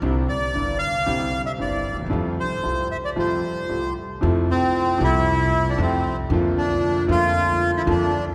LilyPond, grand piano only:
\new Staff \with { instrumentName = "Grand piano" } { \clef bass \time 4/4 \key f \major \tempo 4 = 115 <c, c d g c' e'>8 r8 <g,, g, d g c' e'>8 r8 <c, c d g c' e'>8 r8 <g,, g, d g c' e'>8 r32 d,32 ees,32 e,32 | <f, c f g a f'>8 r8 <c, c g a f'>8 r8 <f, c f g a f'>8 r8 <c, c g a f'>8 r8 | <f, c f a e'>4. <c, c f a e'>4. <f, c f a e'>8 r8 | <f, d f a bes f'>4. <f, d f a bes f'>4. <f, d f a bes f'>8 r8 | }